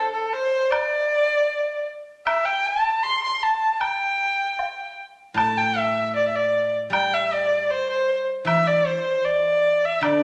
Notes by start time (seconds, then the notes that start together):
Already playing: A4
0.13 A4
0.34 C5
0.71 D5, high woodblock
2.27 E5, high woodblock
2.46 G5
2.67 A5
3.03 C6
3.24 C6
3.43 A5
3.80 G5, high woodblock
4.59 low woodblock
5.34 A2 A5, high woodblock
5.58 G5
5.78 E5
6.16 D5
6.28 E5
6.36 D5
6.90 G3 G5, high woodblock
7.14 E5
7.33 D5
7.71 C5
7.89 C5
8.45 E3 E5, high woodblock
8.67 D5
8.87 C5
9.25 D5
9.85 E5
10.01 D3 D5, high woodblock